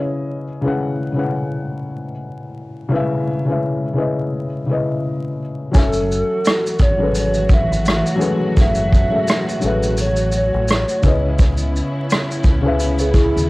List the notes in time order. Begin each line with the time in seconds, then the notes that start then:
Already playing: C#3 C#4 E4 B4 D#5
0.61 C#3 C#4 E4
0.66 B4 F#5
1.12 C#3 C#4 E4
1.17 B4 F#5
2.89 C#3 C#4 E4
2.94 B4 E5
3.45 C#3 C#4 E4
3.49 B4 E5
3.93 C#3 C#4 E4
3.98 B4 D#5
4.66 C#3 C#4 E4
4.71 B4 D#5
5.72 F#1 F#3 C#4 G#5, kick, closed hi-hat, shaker
5.76 E3 F#3 A3 F#4 A4 E5
5.93 shaker
6.12 shaker
6.45 cross-stick, closed hi-hat, shaker
6.66 shaker
6.79 G#1 C#5, kick, shaker
6.97 F#3 C#4 G#4
7.02 A4 B4
7.15 C#5, closed hi-hat, shaker
7.34 shaker
7.49 kick, shaker
7.54 E5
7.71 G#1, shaker
7.86 cross-stick, closed hi-hat, shaker
8.06 shaker
8.15 F#3 C#4 G#4
8.21 A4 B4, shaker
8.57 F#1 E5, kick, closed hi-hat, shaker
8.75 shaker
8.93 kick, shaker
9.08 F#3 C#4 G#4
9.13 A4 E5
9.28 cross-stick, closed hi-hat, shaker
9.49 shaker
9.60 A1 F#3 C#4 G#4, shaker
9.64 A4 B4 E5
9.83 shaker
9.97 C#5, closed hi-hat, shaker
10.16 shaker
10.32 shaker
10.37 C#5
10.54 A1
10.68 cross-stick, closed hi-hat, shaker
10.89 shaker
11.02 C#2 C#3 B3 C#4 E4, kick, shaker
11.06 B4 D#5
11.39 kick, closed hi-hat, shaker
11.57 shaker
11.76 shaker
12.10 cross-stick, closed hi-hat, shaker
12.31 shaker
12.44 C#2, kick, shaker
12.62 C#3 C#4 E4
12.66 B4 E5
12.80 closed hi-hat, shaker
12.99 G#4 B4, shaker
13.14 E4 G#4, kick, shaker
13.36 D#2, shaker